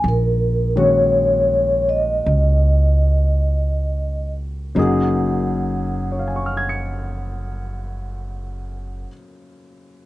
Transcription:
X:1
M:4/4
L:1/8
Q:"Swing" 1/4=45
K:F#
V:1 name="Vibraphone"
A c2 d4 z | f8 |]
V:2 name="Grand piano"
z8 | z2 [cegc'e'g'c'']6 |]
V:3 name="Grand piano"
z [D,G,A,CF]6- [D,G,A,CF] | [F,,F,A,DG]8 |]
V:4 name="Upright bass" clef=bass
A,,,4 C,,4 | F,,,8 |]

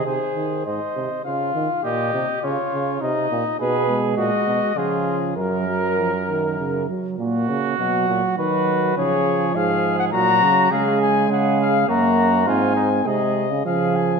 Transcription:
X:1
M:3/4
L:1/16
Q:1/4=102
K:Abmix
V:1 name="Cornet"
c4 e4 f4 | e4 d4 e4 | [K:F#] B4 d4 G4 | A8- A2 z2 |
z4 f4 B4 | c4 e3 f a4 | e2 g2 f2 e2 a4 | g4 d4 e2 g2 |]
V:2 name="Flugelhorn"
A4 c4 F4 | =G4 F4 E4 | [K:F#] G4 F4 E4 | A8- A2 z2 |
F8 F4 | G4 G4 F4 | G4 G4 F4 | E2 D2 G2 z2 G4 |]
V:3 name="Trombone" clef=bass
z12 | z12 | [K:F#] B,2 G,6 E,4 | F,2 F,2 E,2 D,2 C,2 F,2 |
A,4 F,4 F,4 | E,8 F,4 | G,8 A,4 | ^B,4 G,2 z2 C,4 |]
V:4 name="Euphonium" clef=bass
C,2 E,2 A,,2 C,2 D,2 E,2 | B,,2 C,2 D,2 D,2 C,2 B,,2 | [K:F#] B,,4 A,,2 B,,2 C,4 | F,,8- F,,2 z2 |
A,,2 C,2 B,,2 A,,2 D,4 | C,4 G,,4 A,,2 C,2 | C,4 C,4 F,,4 | G,,4 ^B,,3 C, E,4 |]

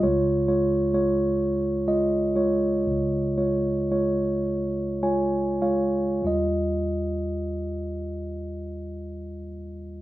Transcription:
X:1
M:6/8
L:1/8
Q:3/8=36
K:Ebmix
V:1 name="Tine electric piano"
[A,Fd] [A,Fd] [A,Fd]2 [A,Fe] [A,Fd]- | [A,Fd] [A,Fd] [A,Fd]2 [A,Fda] [A,Fdf] | [G,Fe]6 |]
V:2 name="Tine electric piano" clef=bass
[D,,D,]6 | [D,,D,]6 | E,,6 |]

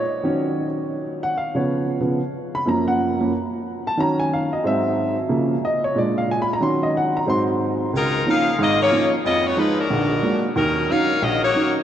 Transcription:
X:1
M:4/4
L:1/8
Q:"Swing" 1/4=183
K:Db
V:1 name="Saxophone section"
z8 | z8 | z8 | z8 |
z8 | z8 | [A,EFB]2 [EABf]2 [B,FAe] [B,FAd]2 z | [_CFAe] [CEGd] [A,EF_c] [A,=DGB]4 z |
[G,DEB]2 [EBdf]2 [DGBe] [B,EGd]2 z |]
V:2 name="Upright piano"
^c4 z3 g | f d3 z3 _c' | b g3 z3 =a | b a f e =e3 z |
z2 e d =d f (3a _c' b | c' e g b c' z3 | z8 | z8 |
z8 |]
V:3 name="Upright piano" clef=bass
z [E,G,D]6- [E,G,D] | z [D,F,_C]3 [D,F,C] z3 | [G,,F,B,]3 [G,,F,B,] z4 | [E,G,D]3 z [A,,G,C]3 z |
[D,F,B,] z3 [B,,A,=D]4 | [E,G,D]4 [A,,G,C]4 | D,,2 [F,B,DE] z [A,,,A,,]2 [F,B,DE] z | F,,2 [F,A,E] z [B,,,=D,]2 [^F,A,B,=D] z |
E,,2 [G,DE] z B,,,2 [G,DE] z |]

